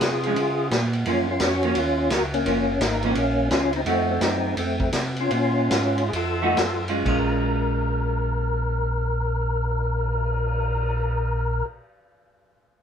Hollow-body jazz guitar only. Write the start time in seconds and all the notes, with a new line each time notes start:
0.26 F3 G#3 C#4
1.06 F3 A#3 C#4
1.64 F3 A#3 C#4
2.46 F3 A#3 C#4
3.04 F3 A#3 C#4
3.85 F3 A3 D#4 F#4
6.42 F3 A3 D#4 F#4
6.89 G#3 C#4 F4
7.05 G#3 C#4 F4